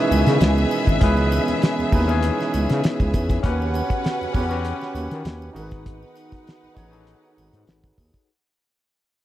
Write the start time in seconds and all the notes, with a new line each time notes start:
Already playing: B2 D#3 E3 G#3 B3 C#4 D#4 E4 G#4 B4 C#5 E5
0.11 C#2, closed hi-hat, triangle
0.26 C#3, snare, closed hi-hat, muted triangle
0.40 C#2, snare, closed hi-hat, muted triangle
0.57 closed hi-hat, muted triangle
0.71 open hi-hat, triangle
0.86 G#1, kick, closed hi-hat, muted triangle
1.01 C#2 E3 C#4 G#4 B4, kick, closed hi-hat, muted triangle
1.17 muted triangle
1.32 closed hi-hat, triangle
1.48 D#2, closed hi-hat, muted triangle
1.62 snare, closed hi-hat, muted triangle
1.79 D#2, muted triangle
1.92 D#2 D#4 E4 G#4 B4, kick, open hi-hat, triangle
2.08 C#4 G#4 C#5 E5, closed hi-hat, muted triangle
2.23 closed hi-hat, muted triangle
2.41 snare, muted triangle
2.54 C#2, closed hi-hat, triangle
2.69 C#3, snare, closed hi-hat, muted triangle
2.84 snare, closed hi-hat, muted triangle
3.00 C#2, kick, closed hi-hat, muted triangle
3.14 E2, kick, closed hi-hat, triangle
3.29 kick, closed hi-hat, muted triangle
3.43 D#2 C#3 B3 C#4 F#4 G4 B4 F#5, kick, closed hi-hat, muted triangle
3.62 muted triangle
3.74 closed hi-hat, triangle
3.90 E2, kick, closed hi-hat, muted triangle
4.04 snare, closed hi-hat, muted triangle
4.21 E2, closed hi-hat, muted triangle
4.33 E2 C#4 F#4 G4 B4, kick, open hi-hat, triangle
4.49 C#4 F#4 G4 B4, closed hi-hat, muted triangle
4.64 closed hi-hat, muted triangle
4.82 snare, muted triangle
4.95 D#2, closed hi-hat, triangle
5.11 D#3, closed hi-hat, muted triangle
5.25 D#2, snare, closed hi-hat, muted triangle
5.42 muted triangle
5.53 G#1 D#3 B3 D#4 F#4 G#4 A#4 B4 F#5, closed hi-hat, triangle
5.62 B4
5.71 kick, closed hi-hat, muted triangle
5.86 kick, closed hi-hat, muted triangle
6.03 muted triangle
6.16 closed hi-hat, triangle
6.32 A1, kick, closed hi-hat, muted triangle
6.47 snare, closed hi-hat, muted triangle
6.63 A1, muted triangle
6.74 A1 D#4 F#4 G#4 C#5, kick, closed hi-hat, triangle
6.90 D#4 F#4 G#4 A4, closed hi-hat, muted triangle
7.00 B4
7.07 closed hi-hat, muted triangle
7.23 closed hi-hat, muted triangle
7.38 G#1, closed hi-hat, triangle
7.53 G#2, closed hi-hat, muted triangle
7.67 G#1, snare, closed hi-hat, muted triangle
7.84 kick, closed hi-hat, muted triangle
7.98 D#2, kick, closed hi-hat, triangle
8.14 kick, closed hi-hat, muted triangle